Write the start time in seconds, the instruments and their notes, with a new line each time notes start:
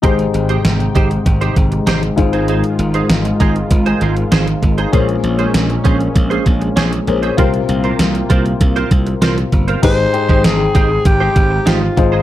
0.02 slap bass G#1, grand piano G#2 D#4 G4 G#4 C5, analog synth pad C3 G#3 G5, clean electric guitar D#4 G4 C5, kick, closed hi-hat
0.19 muted clean electric guitar stroke, closed hi-hat
0.34 slap bass G#1, muted clean electric guitar stroke, closed hi-hat
0.49 clean electric guitar D#4 G4 C5, closed hi-hat
0.65 slap bass G#1, snare, closed hi-hat
0.80 muted clean electric guitar stroke, closed hi-hat
0.95 slap bass G#1, clean electric guitar D#4 G4 C5, kick, closed hi-hat
1.10 muted clean electric guitar stroke, closed hi-hat
1.26 slap bass G#1, muted clean electric guitar stroke, kick, closed hi-hat
1.41 clean electric guitar D#4 G4 C5, closed hi-hat
1.56 slap bass G#1, muted clean electric guitar stroke, kick, closed hi-hat
1.72 muted clean electric guitar stroke, closed hi-hat
1.87 slap bass G#1, clean electric guitar D#4 G4 C5, snare, closed hi-hat
2.02 muted clean electric guitar stroke, closed hi-hat
2.16 slap bass G#1, grand piano G#2 D#4 F4 G#4 C5, analog synth pad D#3 F4, muted clean electric guitar stroke, kick, closed hi-hat
2.33 clean electric guitar D#4 G#4 C5, closed hi-hat
2.48 clean electric guitar D#4 G#4 C5, closed hi-hat
2.64 muted clean electric guitar stroke, closed hi-hat
2.79 slap bass G#1, muted clean electric guitar stroke, closed hi-hat
2.94 clean electric guitar D#4 G#4 C5, closed hi-hat
3.09 slap bass G#1, snare, closed hi-hat
3.25 muted clean electric guitar stroke, closed hi-hat
3.40 slap bass G#1, clean electric guitar D#4 G#4 C5, kick, closed hi-hat
3.56 muted clean electric guitar stroke, closed hi-hat
3.71 slap bass G#1, muted clean electric guitar stroke, kick, closed hi-hat
3.86 clean electric guitar D#4 G#4 C5, closed hi-hat
4.01 slap bass G#1, clean electric guitar D#4 G#4 C5, closed hi-hat
4.16 muted clean electric guitar stroke, closed hi-hat
4.32 slap bass G#1, clean electric guitar D#4 G#4 C5, snare, closed hi-hat
4.47 muted clean electric guitar stroke, closed hi-hat
4.62 slap bass G#1, muted clean electric guitar stroke, kick, closed hi-hat
4.78 clean electric guitar D#4 G#4 C5, closed hi-hat
4.92 slap bass A#1, grand piano A#2 C#4 G#4 A#4 C5, analog synth pad A#2 C#4, clean electric guitar C#4 G#4 C5, kick, closed hi-hat
5.08 muted clean electric guitar stroke, closed hi-hat
5.23 slap bass A#1, muted clean electric guitar stroke, closed hi-hat
5.39 clean electric guitar C#4 G#4 C5, closed hi-hat
5.54 slap bass A#1, snare, closed hi-hat
5.69 muted clean electric guitar stroke, closed hi-hat
5.84 slap bass A#1, clean electric guitar C#4 G#4 C5, kick, closed hi-hat
6.00 muted clean electric guitar stroke, closed hi-hat
6.15 slap bass A#1, muted clean electric guitar stroke, kick, closed hi-hat
6.30 clean electric guitar C#4 G#4 C5, closed hi-hat
6.46 slap bass A#1, muted clean electric guitar stroke, kick, closed hi-hat
6.61 muted clean electric guitar stroke, closed hi-hat
6.76 slap bass A#1, clean electric guitar C#4 G#4 C5, snare, closed hi-hat
6.92 muted clean electric guitar stroke, closed hi-hat
7.07 slap bass A#1, grand piano C#4 G#4 A#4 C5, muted clean electric guitar stroke, closed hi-hat
7.22 clean electric guitar C#4 G#4 C5, closed hi-hat
7.37 slap bass C2, grand piano C3 F4 G4 A#4 C5, analog synth pad A#3 F4, clean electric guitar F4 A#4 C5, kick, closed hi-hat
7.53 muted clean electric guitar stroke, closed hi-hat
7.68 slap bass C2, muted clean electric guitar stroke, closed hi-hat
7.84 clean electric guitar F4 A#4 C5, closed hi-hat
7.99 slap bass C2, snare, closed hi-hat
8.14 muted clean electric guitar stroke, closed hi-hat
8.30 slap bass C2, clean electric guitar F4 A#4 C5, kick, closed hi-hat
8.45 muted clean electric guitar stroke, closed hi-hat
8.61 slap bass C2, muted clean electric guitar stroke, kick, closed hi-hat
8.76 clean electric guitar F4 A#4 C5, closed hi-hat
8.91 slap bass C2, muted clean electric guitar stroke, kick, closed hi-hat
9.07 muted clean electric guitar stroke, closed hi-hat
9.22 slap bass C2, clean electric guitar F4 A#4 C5, snare, closed hi-hat
9.37 muted clean electric guitar stroke, closed hi-hat
9.52 slap bass G1, muted clean electric guitar stroke, kick, closed hi-hat
9.68 clean electric guitar F4 A#4 C5, closed hi-hat
9.82 slap bass G#1, grand piano G#2 D#4 G4 G#4 C5, clean electric guitar D#4 G4 C5, alto saxophone C5, kick, closed hi-hat, crash
9.98 muted clean electric guitar stroke
10.13 grand piano D#4 G#4 C5 G5, muted clean electric guitar stroke, closed hi-hat
10.29 slap bass G#1, clean electric guitar D#4 G4 C5, kick
10.44 slap bass G#1, alto saxophone G#4, snare, closed hi-hat
10.59 muted clean electric guitar stroke
10.75 slap bass G#1, clean electric guitar D#4 G4 C5, kick, closed hi-hat
10.90 muted clean electric guitar stroke
11.05 slap bass G#1, alto saxophone G4, muted clean electric guitar stroke, kick, closed hi-hat
11.20 clean electric guitar D#4 G4 C5
11.36 slap bass G#1, muted clean electric guitar stroke, kick, closed hi-hat
11.51 muted clean electric guitar stroke
11.66 slap bass G#1, clean electric guitar D#4 G4 C5, alto saxophone F4, snare, closed hi-hat
11.82 muted clean electric guitar stroke
11.97 slap bass G#1, grand piano G#2 D#4 F4 G#4 C5, muted clean electric guitar stroke, kick, closed hi-hat
12.12 clean electric guitar D#4 G#4 C5